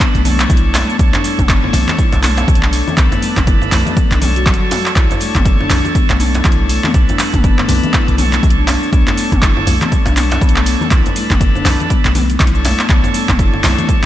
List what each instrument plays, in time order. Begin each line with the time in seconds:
Already playing: tonewheel organ D4 A4 B4
0.00 marimba B3, kick, clap, closed hi-hat, high conga, shaker
0.15 808-style bass B1, marimba A3, closed hi-hat, shaker
0.25 marimba B3, tonewheel organ D4 A4 C#5, open hi-hat, mid tom, low conga, shaker
0.40 clap, closed hi-hat, high conga, shaker
0.49 808-style bass B1, marimba E4, kick, closed hi-hat, high conga, low conga, shaker
0.57 closed hi-hat
0.74 marimba A3, clap, open hi-hat, mid tom, djembe slap, shaker
0.89 marimba B3, shaker
0.99 808-style bass B1, tonewheel organ D4 A4 C#5, kick, closed hi-hat, shaker
1.13 marimba D4, clap, closed hi-hat, djembe tone, shaker
1.24 open hi-hat, high conga, shaker
1.39 808-style bass F#1, kick, closed hi-hat, mid tom, shaker
1.49 marimba B3, kick, clap, closed hi-hat, shaker
1.64 marimba A3, djembe tone
1.73 808-style bass B1, marimba B3, open hi-hat, djembe tone, low conga, shaker
1.88 clap, closed hi-hat, low conga, shaker
1.98 marimba E4, kick, closed hi-hat, shaker
2.12 808-style bass B1, closed hi-hat, djembe slap, shaker
2.23 marimba A3, tonewheel organ D4 A4 C#5, clap, open hi-hat, mid tom, shaker
2.38 marimba B3, closed hi-hat, djembe slap, shaker
2.48 808-style bass B1, kick, closed hi-hat, low conga, shaker
2.55 closed hi-hat
2.63 marimba D4, clap, high conga
2.73 open hi-hat, shaker
2.87 mid tom, low conga, shaker
2.97 808-style bass B1, marimba B3, tonewheel organ D4 A4 B4, kick, clap, closed hi-hat, shaker
3.12 marimba A3, closed hi-hat, djembe tone, shaker
3.22 marimba B3, open hi-hat, high conga, shaker
3.37 808-style bass F#1, kick, clap, closed hi-hat, mid tom, shaker
3.47 marimba E4, kick, closed hi-hat, shaker
3.62 djembe tone, shaker
3.72 808-style bass B1, marimba A3, clap, open hi-hat, djembe tone, low conga, shaker
3.86 marimba B3, closed hi-hat, low conga, shaker
3.96 kick, closed hi-hat, high conga, shaker
4.11 808-style bass B1, marimba D4, clap, closed hi-hat, shaker
4.21 tonewheel organ D4 A4 C#5, open hi-hat, mid tom, low conga, shaker
4.36 marimba F#4, closed hi-hat, high conga, shaker
4.46 808-style bass F#1, marimba F#3, kick, clap, closed hi-hat, high conga, low conga, shaker
4.54 closed hi-hat
4.61 marimba F#4
4.71 marimba F#4, open hi-hat, mid tom, djembe slap, shaker
4.86 clap, shaker
4.96 808-style bass B1, tonewheel organ D4 A4 C#5, marimba E4, kick, clap, closed hi-hat, shaker
5.11 closed hi-hat, djembe tone, shaker
5.21 marimba A3, open hi-hat, high conga, shaker
5.35 808-style bass F#1, kick, clap, closed hi-hat, mid tom, shaker
5.45 kick, closed hi-hat, shaker
5.60 marimba D4, djembe tone
5.70 808-style bass B1, clap, open hi-hat, djembe tone, low conga, shaker
5.85 closed hi-hat, low conga, shaker
5.95 marimba B3, kick, closed hi-hat, high conga, shaker
6.10 808-style bass B1, marimba A3, clap, closed hi-hat, djembe slap, shaker
6.20 marimba B3, tonewheel organ D4 A4 C#5, open hi-hat, mid tom, shaker
6.35 closed hi-hat, djembe slap, shaker
6.45 808-style bass B1, marimba E4, kick, clap, closed hi-hat, low conga, shaker
6.52 closed hi-hat
6.60 high conga
6.69 marimba A3, open hi-hat, shaker
6.84 marimba B3, clap, mid tom, low conga, shaker
6.94 808-style bass B1, tonewheel organ D4 A4 B4, kick, closed hi-hat, shaker
7.09 marimba D4, closed hi-hat, djembe tone, shaker
7.19 clap, open hi-hat, high conga, shaker
7.34 808-style bass F#1, kick, closed hi-hat, mid tom, shaker
7.44 marimba B3, kick, closed hi-hat, shaker
7.58 marimba A3, clap, djembe tone
7.68 808-style bass B1, marimba B3, open hi-hat, djembe tone, low conga, shaker
7.83 closed hi-hat, low conga, shaker
7.93 marimba E4, kick, clap, closed hi-hat, high conga, shaker
8.08 808-style bass B1, closed hi-hat, shaker
8.18 marimba A3, tonewheel organ D4 A4 C#5, open hi-hat, mid tom, low conga, shaker
8.33 marimba B3, clap, closed hi-hat, high conga, shaker
8.43 808-style bass B1, kick, closed hi-hat, high conga, low conga, shaker
8.50 closed hi-hat
8.58 marimba D4
8.67 clap, open hi-hat, mid tom, djembe slap, shaker
8.83 shaker
8.93 808-style bass B1, marimba B3, tonewheel organ D4 A4 C#5, kick, closed hi-hat, shaker
9.07 marimba A3, clap, closed hi-hat, djembe tone, shaker
9.17 marimba B3, open hi-hat, high conga, shaker
9.32 808-style bass F#1, kick, closed hi-hat, mid tom, shaker
9.42 marimba E4, kick, clap, closed hi-hat, shaker
9.57 djembe tone
9.67 808-style bass B1, marimba A3, open hi-hat, djembe tone, low conga, shaker
9.82 marimba B3, clap, closed hi-hat, low conga, shaker
9.92 kick, closed hi-hat, high conga, shaker
10.06 808-style bass B1, marimba D4, closed hi-hat, djembe slap, shaker
10.17 tonewheel organ D4 A4 C#5, clap, open hi-hat, mid tom, shaker
10.31 closed hi-hat, djembe slap, shaker
10.41 808-style bass B1, marimba B3, kick, closed hi-hat, low conga, shaker
10.49 closed hi-hat
10.55 marimba A3, clap, high conga
10.66 marimba B3, open hi-hat, shaker
10.81 mid tom, low conga, shaker
10.91 808-style bass B1, tonewheel organ D4 A4 B4, marimba E4, kick, clap, closed hi-hat, shaker
11.06 closed hi-hat, djembe tone, shaker
11.16 marimba A3, open hi-hat, high conga, shaker
11.31 808-style bass F#1, marimba B3, kick, clap, closed hi-hat, mid tom, shaker
11.41 kick, closed hi-hat, shaker
11.55 marimba D4, djembe tone, shaker
11.65 808-style bass B1, clap, open hi-hat, djembe tone, low conga, shaker
11.80 closed hi-hat, low conga, shaker
11.90 marimba B3, kick, closed hi-hat, high conga, shaker
12.05 808-style bass B1, marimba A3, clap, closed hi-hat, shaker
12.15 marimba B3, open hi-hat, mid tom, low conga, shaker
12.29 closed hi-hat, high conga, shaker
12.39 808-style bass B1, marimba E4, kick, clap, closed hi-hat, high conga, low conga, shaker
12.47 closed hi-hat
12.55 tonewheel organ D4 A4 C#5, shaker
12.65 marimba A3, open hi-hat, mid tom, djembe slap, shaker
12.79 marimba B3, clap, shaker
12.89 808-style bass B1, marimba B3, tonewheel organ D4 A4 C#5, kick, clap, closed hi-hat, shaker
13.04 marimba A3, closed hi-hat, djembe tone, shaker
13.14 marimba B3, open hi-hat, high conga, shaker
13.29 808-style bass F#1, kick, clap, closed hi-hat, mid tom, shaker
13.39 marimba E4, kick, closed hi-hat, shaker
13.54 djembe tone
13.64 808-style bass B1, marimba A3, clap, open hi-hat, djembe tone, low conga, shaker
13.78 marimba B3, closed hi-hat, low conga, shaker
13.88 kick, closed hi-hat, high conga, shaker